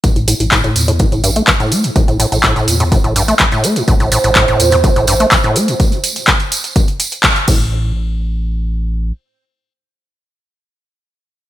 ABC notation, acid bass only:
X:1
M:4/4
L:1/16
Q:1/4=125
K:Aphr
V:1 name="Acid bass" clef=bass
A,, A,, A,, A,, A,, A,, B,, A,, A,, A,, G,, A, E, A,, A, A,, | A,, A,, A,, A,, A,, A,, B,, A,, A,, A,, G,, A, E, A,, A, A,, | A,, A,, A,, A,, A,, A,, B,, A,, A,, A,, G,, A, E, A,, A, A,, | z12 z2 A,,2- |
A,,2 z12 z2 | z16 |]